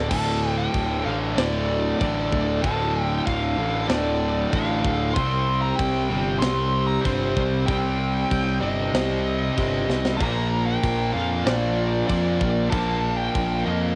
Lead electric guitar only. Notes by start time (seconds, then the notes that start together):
Already playing: D5
0.09 A5
0.57 G5
1.05 F5
1.36 D5
1.98 D5
2.62 A5
3.10 G5
3.26 F5
3.88 D5
4.51 F5
5.14 C6
5.62 A#5
5.76 G5
6.39 C6
6.87 A#5
7.01 C5
7.66 G5
8.61 D#5
9.55 D#5
10.17 A#5
10.66 G5
11.14 F5
11.44 D5
12.07 D5
12.70 A5
13.17 G5
13.65 D#5